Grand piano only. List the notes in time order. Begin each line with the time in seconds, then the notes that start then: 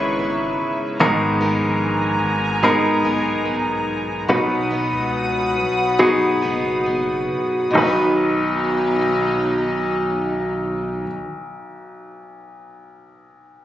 Already playing: C#4 E4 G#4 A#4 B4
1.00 G#2 D#3 B3 D#4 G#4 A#4
2.63 B3 D#4 G#4 A#4
4.29 B2 F#3 B3 D#4 F#4 B4
5.99 B3 D#4 F#4 G#4
7.73 B1 D#4 F#4 B4